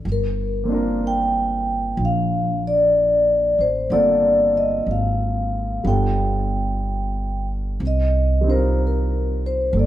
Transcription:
0.05 upright bass G1
0.12 vibraphone A#4
0.64 grand piano A#3 C4
0.69 grand piano D4 F4
0.74 grand piano A#4
1.07 vibraphone G5
1.97 upright bass A#1
2.05 vibraphone F5
2.67 vibraphone D5
3.59 upright bass A1, vibraphone C5
3.90 upright bass G1, grand piano D3 A#3 C4 F4 A4, vibraphone D5
4.57 vibraphone D#5
4.86 upright bass G#1
4.91 vibraphone F5
5.84 upright bass G1, grand piano G3 B3 D4 F4, vibraphone G5
5.88 grand piano A4
7.80 upright bass C2
7.87 vibraphone D#5
8.41 grand piano G3 C4
8.47 grand piano D#4 F4, vibraphone C5
8.51 grand piano A#4
8.87 vibraphone A#4
9.46 vibraphone C5
9.73 upright bass G1, grand piano A#3
9.77 grand piano A4, vibraphone D5

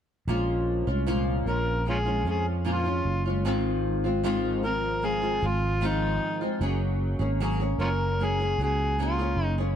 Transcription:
0.28 fretless electric bass A#1, nylon-string guitar A#2 F3 G#3 C#4 F4
0.87 fretless electric bass C2, nylon-string guitar G#3 C#4 F4
1.07 nylon-string guitar A#2 F3 G#3 C#4 F4
1.46 fretless electric bass A#1, nylon-string guitar F3 G#3 C#4 F4, harmonica A#4
1.85 nylon-string guitar F3 G#3 C#4 F4
1.90 harmonica C#4 F4 G#4
2.06 nylon-string guitar G#3 C#4 F4
2.25 fretless electric bass F2, nylon-string guitar F3 G#3 C#4 F4
2.30 harmonica G#4
2.65 nylon-string guitar A#2 F3 G#3 C#4 F4
2.70 harmonica F4
2.85 nylon-string guitar G#3 C#4 F4
3.05 fretless electric bass F#1
3.25 nylon-string guitar G#3 C#4 F4
3.45 fretless electric bass G#1, nylon-string guitar G#2 D#3 F3 G#3 C4 F4
4.04 nylon-string guitar F3 G#3 C4 F4
4.24 nylon-string guitar G#2 D#3 F3 G#3 C4 F4
4.63 nylon-string guitar F3 G#3 C4 F4, harmonica A#4
5.02 nylon-string guitar F3 G#3 C4 F4, harmonica G#4
5.22 nylon-string guitar F3 G#3 C4 F4
5.41 fretless electric bass G#1, nylon-string guitar F3 G#3 C4 F4
5.46 harmonica F4
5.81 nylon-string guitar G#2 D#3 F3 G#3 C4 F4
5.87 harmonica D#4
6.41 nylon-string guitar F3 G#3 C4 F4
6.61 fretless electric bass F#1, nylon-string guitar F#3 A#3 C#4 G#4
7.19 fretless electric bass G#1, nylon-string guitar A#3 C#4 G#4
7.40 nylon-string guitar F#3 A#3 C#4 G#4
7.60 nylon-string guitar A#3 C#4 G#4
7.78 fretless electric bass F#1, nylon-string guitar F#3 A#3 C#4 G#4, harmonica C#4 F4 A#4
8.19 nylon-string guitar F#3 A#3 C#4 G#4
8.24 harmonica G#4
8.40 nylon-string guitar A#3 C#4 G#4
8.58 fretless electric bass C#2, nylon-string guitar F#3 A#3 C#4 G#4
8.64 harmonica G#4
8.99 nylon-string guitar F#3 A#3 C#4 G#4
9.04 harmonica F4
9.19 nylon-string guitar A#3 C#4 G#4
9.37 fretless electric bass F#1
9.45 harmonica D#4
9.58 nylon-string guitar A#3 C#4 G#4

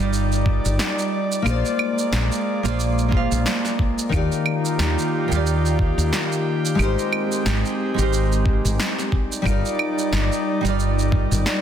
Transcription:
Already playing: nylon-string guitar G3 D#4, analog synth pad G3 D#4 D5
0.00 fretless electric bass G1, nylon-string guitar F4 A#4 D5
0.13 shaker
0.32 shaker
0.46 kick
0.65 fretless electric bass G1, shaker
0.79 snare, shaker
0.99 shaker
1.32 shaker
1.42 fretless electric bass A#1, analog synth pad G#3 A#3, nylon-string guitar A#3 F4 G#4, claves
1.46 nylon-string guitar C5 D5, shaker
1.65 shaker
1.79 claves
1.99 shaker
2.13 fretless electric bass A#1, snare, shaker
2.32 shaker
2.63 fretless electric bass A#1, nylon-string guitar A#3 F4 G#4 C5 D5, shaker
2.80 shaker
2.99 shaker
3.09 nylon-string guitar A#3 F4, kick
3.13 nylon-string guitar G#4 C5
3.17 nylon-string guitar F5
3.32 fretless electric bass A#1, shaker
3.46 snare, shaker
3.65 snare, shaker
3.79 kick
3.99 shaker
4.09 fretless electric bass D#2, nylon-string guitar D#3 D#4 F4, analog synth pad D#3 F4 G4, kick, claves, shaker
4.15 nylon-string guitar G4 D5
4.32 shaker
4.46 claves
4.65 shaker
4.79 fretless electric bass D#2, snare, shaker
4.99 shaker
5.28 fretless electric bass D#2, nylon-string guitar D#3 D#4 F4
5.32 nylon-string guitar G4 D5, shaker
5.47 shaker
5.66 shaker
5.79 kick
5.98 fretless electric bass D#2, shaker
6.13 snare, shaker
6.32 shaker
6.66 shaker
6.75 fretless electric bass G#1, nylon-string guitar G#3 D#4
6.79 analog synth pad G#3 C4, nylon-string guitar G4 A#4, claves, shaker
6.83 nylon-string guitar C5
6.99 shaker
7.13 claves
7.32 shaker
7.46 fretless electric bass G#1, snare, shaker
7.65 shaker
7.94 nylon-string guitar G#3 D#4 G4
7.98 fretless electric bass G#1, nylon-string guitar A#4 C5, shaker
8.13 shaker
8.32 shaker
8.46 kick
8.65 fretless electric bass G#1, shaker
8.80 snare, shaker
8.99 snare, shaker
9.12 analog synth pad G3 D#4 D5, kick
9.32 shaker
9.42 fretless electric bass G1, nylon-string guitar G3 D#4 F4, kick
9.46 nylon-string guitar A#4 D5, claves, shaker
9.65 shaker
9.79 claves
9.99 shaker
10.13 fretless electric bass G1, snare, shaker
10.32 shaker
10.61 fretless electric bass G1, nylon-string guitar G3 D#4
10.65 nylon-string guitar F4 A#4 D5, shaker
10.80 shaker
10.99 shaker
11.12 kick
11.31 fretless electric bass G1, shaker
11.46 snare, shaker

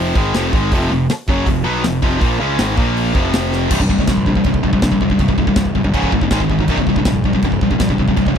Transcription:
Already playing: picked electric bass F1, distorted electric guitar F2 C3 F3
0.15 picked electric bass G#1, distorted electric guitar G#2 D#3 G#3, kick
0.34 picked electric bass F1, distorted electric guitar F2 C3 F3, snare, open hi-hat
0.53 picked electric bass G#1, distorted electric guitar G#2 D#3 G#3, kick
0.72 picked electric bass F1, distorted electric guitar F2 C3 F3, kick, open hi-hat
0.90 picked electric bass F1, distorted electric guitar F2 C3
1.10 muted picked electric bass stroke, muted distorted electric guitar stroke, snare, open hi-hat
1.28 picked electric bass F#1, distorted electric guitar F#2 C#3 F#3, kick
1.46 picked electric bass F1, distorted electric guitar F2 C3, kick, open hi-hat
1.64 picked electric bass B1, distorted electric guitar B2 F#3 B3
1.84 picked electric bass F1, distorted electric guitar F2 C3, snare, open hi-hat
2.02 picked electric bass F1, distorted electric guitar F2 C3 F3, kick
2.20 picked electric bass A#1, distorted electric guitar A#2 F3 A#3, kick, open hi-hat
2.39 picked electric bass C#2, distorted electric guitar C#3 G#3 C#4
2.59 picked electric bass G#1, distorted electric guitar G#2 D#3 G#3, snare, open hi-hat
2.76 picked electric bass A#1, distorted electric guitar A#2 F3 A#3, kick
2.97 open hi-hat
3.14 picked electric bass F1, distorted electric guitar F2 C3 F3, kick
3.33 snare, open hi-hat
3.53 snare
3.70 picked electric bass C1, distorted electric guitar C2 G2 C3, kick, crash
3.80 distorted electric guitar C2 G2, kick
3.89 picked electric bass C1, distorted electric guitar C2 G2, kick
3.98 distorted electric guitar C2 G2, kick
4.07 picked electric bass A#1, distorted electric guitar C2 G2, kick, snare, crash
4.17 kick
4.26 distorted electric guitar C2 G2, kick
4.35 distorted electric guitar C2 G2, kick
4.44 picked electric bass C1, distorted electric guitar C2 G2, kick, crash
4.54 kick
4.63 picked electric bass A#1, distorted electric guitar C2 G2, kick
4.73 distorted electric guitar C2 G2, kick
4.82 picked electric bass A#1, distorted electric guitar C2 G2, kick, snare, crash
4.92 distorted electric guitar C2 G2, kick
5.01 picked electric bass F1, distorted electric guitar C2 G2, kick
5.10 distorted electric guitar C2 G2, kick
5.19 picked electric bass C1, distorted electric guitar C2 G2, kick, crash
5.28 distorted electric guitar C2 G2, kick
5.38 distorted electric guitar C2 G2, kick
5.47 distorted electric guitar C2 G2, kick
5.56 picked electric bass C1, distorted electric guitar C2 G2, kick, snare, crash
5.66 kick
5.75 picked electric bass G1, distorted electric guitar C2 G2, kick
5.84 distorted electric guitar C2 G2, kick
5.93 picked electric bass C#1, distorted electric guitar C#2 G#2 C#3, kick, crash
6.03 kick
6.12 picked electric bass G1, distorted electric guitar C#2 G#2, kick
6.21 distorted electric guitar C#2 G#2, kick
6.31 picked electric bass G#1, distorted electric guitar G#2 D#3 G#3, kick, snare, crash
6.40 distorted electric guitar G#2 D#3, kick
6.50 picked electric bass G#1, distorted electric guitar G#2 D#3, kick
6.59 distorted electric guitar G#2 D#3, kick
6.68 picked electric bass C1, distorted electric guitar C2 G2 C3, kick, crash
6.77 distorted electric guitar C2 G2, kick
6.87 picked electric bass C1, distorted electric guitar C2 G2, kick
6.96 distorted electric guitar C2 G2, kick
7.05 picked electric bass A#1, distorted electric guitar C2 G2, kick, snare, crash
7.15 kick
7.24 distorted electric guitar C2 G2, kick
7.33 distorted electric guitar C2 G2, kick
7.42 picked electric bass C1, distorted electric guitar C2 G2, kick, crash
7.52 kick
7.61 picked electric bass A#1, distorted electric guitar C2 G2, kick
7.71 distorted electric guitar C2 G2, kick
7.80 picked electric bass A#1, distorted electric guitar C2 G2, kick, snare, crash
7.89 distorted electric guitar C2 G2, kick
7.98 picked electric bass F1, distorted electric guitar C2 G2, kick
8.08 distorted electric guitar C2 G2, kick
8.17 picked electric bass C1, distorted electric guitar C2 G2, kick, crash
8.26 distorted electric guitar C2 G2, kick

